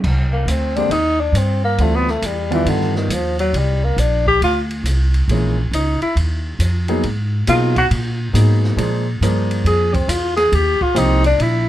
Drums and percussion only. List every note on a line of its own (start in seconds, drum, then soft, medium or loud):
0.04 kick medium
0.04 crash medium
0.48 hi-hat pedal medium
0.48 ride medium
0.76 ride soft
0.91 ride medium
1.35 hi-hat pedal soft
1.35 ride medium
1.78 ride medium
2.07 snare soft
2.22 hi-hat pedal medium
2.22 ride medium
2.52 ride soft
2.66 ride medium
2.81 snare soft
2.95 snare soft
3.10 hi-hat pedal medium
3.10 ride medium
3.39 ride soft
3.54 ride medium
3.98 hi-hat pedal medium
3.98 ride medium
4.26 kick soft
4.42 ride medium
4.71 ride soft
4.85 hi-hat pedal soft
4.85 ride medium
5.14 ride soft
5.29 ride medium
5.73 hi-hat pedal medium
5.73 ride medium
6.02 ride soft
6.17 ride medium
6.60 hi-hat pedal medium
6.60 ride medium
6.88 ride soft
7.03 ride medium
7.47 hi-hat pedal medium
7.47 ride medium
7.76 kick soft
7.76 ride soft
7.91 ride medium
8.35 hi-hat pedal medium
8.35 ride medium
8.64 snare soft
8.78 ride medium
9.22 hi-hat pedal medium
9.22 ride medium
9.51 ride soft
9.66 ride medium
9.94 kick medium
9.94 ride soft
10.09 hi-hat pedal medium
10.09 ride medium
10.37 snare soft
10.37 ride soft
10.52 ride medium
10.81 kick soft
10.96 hi-hat pedal medium
10.96 ride medium
11.24 ride soft
11.40 ride medium